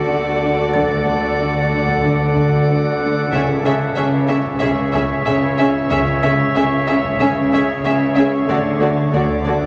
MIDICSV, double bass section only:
0, 0, Header, 1, 2, 480
1, 0, Start_track
1, 0, Tempo, 645161
1, 557, Time_signature, 4, 2, 24, 8
1, 7189, End_track
2, 0, Start_track
2, 0, Title_t, "Double bass section"
2, 0, Program_c, 0, 48
2, 0, Note_on_c, 0, 38, 47
2, 2451, Note_off_c, 0, 38, 0
2, 2475, Note_on_c, 0, 37, 66
2, 2900, Note_off_c, 0, 37, 0
2, 2954, Note_on_c, 0, 37, 66
2, 3379, Note_off_c, 0, 37, 0
2, 3437, Note_on_c, 0, 37, 67
2, 3861, Note_off_c, 0, 37, 0
2, 3917, Note_on_c, 0, 37, 69
2, 4341, Note_off_c, 0, 37, 0
2, 4407, Note_on_c, 0, 37, 73
2, 4826, Note_off_c, 0, 37, 0
2, 4880, Note_on_c, 0, 37, 69
2, 5302, Note_off_c, 0, 37, 0
2, 5363, Note_on_c, 0, 37, 66
2, 5783, Note_off_c, 0, 37, 0
2, 5834, Note_on_c, 0, 37, 64
2, 6259, Note_off_c, 0, 37, 0
2, 6314, Note_on_c, 0, 38, 63
2, 6739, Note_off_c, 0, 38, 0
2, 6798, Note_on_c, 0, 38, 63
2, 7189, Note_off_c, 0, 38, 0
2, 7189, End_track
0, 0, End_of_file